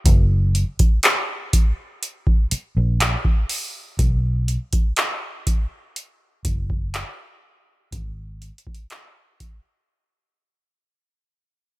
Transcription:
0.06 0.63 F#1 loud
0.06 kick loud
0.06 closed hi-hat medium
0.55 closed hi-hat medium
0.79 muted fingered electric bass stroke medium
0.79 kick medium
0.79 closed hi-hat medium
1.03 clap loud
1.03 closed hi-hat medium
1.53 kick loud
1.53 closed hi-hat medium
2.03 closed hi-hat medium
2.27 kick loud
2.51 muted fingered electric bass stroke medium
2.51 closed hi-hat medium
2.77 3.14 A#1 medium
3.00 clap loud
3.00 closed hi-hat medium
3.25 kick loud
3.49 open hi-hat medium
3.99 4.56 B1 loud
3.99 kick loud
3.99 closed hi-hat medium
4.48 closed hi-hat medium
4.73 muted fingered electric bass stroke medium
4.73 kick loud
4.73 closed hi-hat medium
4.96 clap loud
4.96 closed hi-hat medium
5.47 kick loud
5.47 closed hi-hat medium
5.96 closed hi-hat medium
6.45 7.02 F#1 medium
6.45 kick medium
6.45 closed hi-hat medium
6.70 kick loud
6.94 clap loud
6.94 closed hi-hat medium
7.92 8.50 G#1 loud
7.92 kick loud
7.92 closed hi-hat medium
8.42 closed hi-hat medium
8.58 closed hi-hat medium
8.67 muted fingered electric bass stroke medium
8.67 kick medium
8.75 closed hi-hat medium
8.90 clap loud
8.90 closed hi-hat medium
9.40 kick loud
9.40 closed hi-hat medium

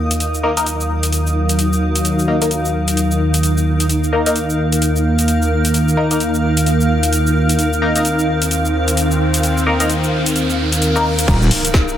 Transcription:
0.00 11.24 D#2 medium
0.00 11.24 D#3 medium
0.00 0.19 A#3 medium
0.00 11.98 D#4 medium
0.00 11.98 A#4 medium
0.00 11.98 F5 medium
0.00 3.47 D#6 medium
0.00 downlifter medium
0.11 closed hi-hat medium
0.11 shaker medium
0.20 3.88 F#3 medium
0.20 closed hi-hat soft
0.20 shaker soft
0.34 shaker soft
0.43 0.51 A#3 medium
0.43 0.51 D#4 medium
0.43 0.51 A#4 medium
0.57 0.65 A#3 medium
0.57 0.65 D#4 medium
0.57 0.65 A#4 medium
0.57 closed hi-hat medium
0.57 shaker medium
0.66 closed hi-hat soft
0.66 shaker soft
0.81 shaker soft
1.03 closed hi-hat medium
1.03 shaker medium
1.13 closed hi-hat soft
1.13 shaker soft
1.27 shaker soft
1.49 closed hi-hat medium
1.49 shaker medium
1.59 closed hi-hat soft
1.59 shaker soft
1.73 shaker soft
1.96 closed hi-hat medium
1.96 shaker medium
2.05 closed hi-hat soft
2.05 shaker soft
2.19 shaker soft
2.28 2.35 A#3 medium
2.28 2.35 D#4 medium
2.28 2.35 A#4 medium
2.42 2.50 A#3 medium
2.42 2.50 D#4 medium
2.42 2.50 A#4 medium
2.42 closed hi-hat medium
2.42 shaker medium
2.51 closed hi-hat soft
2.51 shaker soft
2.65 shaker soft
2.88 closed hi-hat medium
2.88 shaker medium
2.97 closed hi-hat soft
2.97 shaker soft
3.11 shaker soft
3.34 11.95 F6 medium
3.34 closed hi-hat medium
3.34 shaker medium
3.43 closed hi-hat soft
3.43 shaker soft
3.58 shaker soft
3.80 closed hi-hat medium
3.80 shaker medium
3.89 7.58 A#3 medium
3.89 closed hi-hat soft
3.89 shaker medium
4.04 shaker soft
4.13 4.20 A#3 medium
4.13 4.20 D#4 medium
4.13 4.20 A#4 medium
4.26 4.34 A#3 medium
4.26 4.34 D#4 medium
4.26 4.34 A#4 medium
4.26 closed hi-hat medium
4.26 shaker medium
4.36 closed hi-hat soft
4.36 shaker soft
4.50 shaker soft
4.72 closed hi-hat medium
4.72 shaker medium
4.82 closed hi-hat soft
4.82 shaker soft
4.96 shaker soft
5.19 closed hi-hat medium
5.19 shaker medium
5.28 closed hi-hat soft
5.28 shaker medium
5.42 shaker soft
5.65 closed hi-hat medium
5.65 shaker medium
5.74 closed hi-hat medium
5.74 shaker medium
5.88 shaker soft
5.97 6.05 A#3 medium
5.97 6.05 D#4 medium
5.97 6.05 A#4 loud
6.11 6.19 A#3 medium
6.11 6.19 D#4 medium
6.11 6.19 A#4 medium
6.11 closed hi-hat medium
6.11 shaker medium
6.20 closed hi-hat soft
6.20 shaker soft
6.34 shaker soft
6.57 closed hi-hat medium
6.57 shaker medium
6.66 closed hi-hat soft
6.66 shaker medium
6.81 shaker soft
7.03 closed hi-hat medium
7.03 shaker medium
7.13 closed hi-hat soft
7.13 shaker medium
7.27 shaker soft
7.49 closed hi-hat medium
7.49 shaker medium
7.59 11.27 C4 medium
7.59 closed hi-hat medium
7.59 riser medium
7.59 shaker medium
7.73 shaker soft
7.82 7.89 A#3 medium
7.82 7.89 D#4 medium
7.82 7.89 A#4 medium
7.96 8.04 A#3 medium
7.96 8.04 D#4 medium
7.96 8.04 A#4 medium
7.96 closed hi-hat medium
7.96 shaker medium
8.05 closed hi-hat soft
8.05 shaker medium
8.19 shaker soft
8.42 closed hi-hat medium
8.42 shaker medium
8.51 closed hi-hat soft
8.51 shaker medium
8.65 shaker soft
8.88 closed hi-hat medium
8.88 shaker medium
8.97 closed hi-hat medium
8.97 shaker medium
9.11 shaker soft
9.34 closed hi-hat medium
9.34 shaker medium
9.43 closed hi-hat soft
9.43 shaker medium
9.58 shaker soft
9.66 9.74 A#3 medium
9.66 9.74 D#4 medium
9.66 9.74 A#4 medium
9.80 9.88 A#3 medium
9.80 9.88 D#4 medium
9.80 9.88 A#4 medium
9.80 closed hi-hat medium
9.80 shaker medium
9.90 closed hi-hat soft
9.90 shaker soft
10.04 shaker soft
10.26 closed hi-hat medium
10.26 shaker medium
10.36 closed hi-hat soft
10.36 shaker medium
10.50 shaker soft
10.72 closed hi-hat medium
10.72 shaker medium
10.82 closed hi-hat medium
10.82 shaker medium
10.96 11.04 A#3 medium
10.96 11.04 D#4 medium
10.96 11.04 A#4 loud
10.96 shaker soft
11.19 closed hi-hat medium
11.19 shaker medium
11.28 11.50 D#1 medium
11.28 11.98 D#3 medium
11.28 11.98 A#3 medium
11.28 kick loud
11.28 closed hi-hat medium
11.28 crash loud
11.28 impact medium
11.28 shaker medium
11.42 shaker soft
11.51 open hi-hat loud
11.65 closed hi-hat medium
11.65 shaker medium
11.74 kick loud
11.74 snare loud
11.74 closed hi-hat medium
11.74 shaker medium
11.88 shaker soft

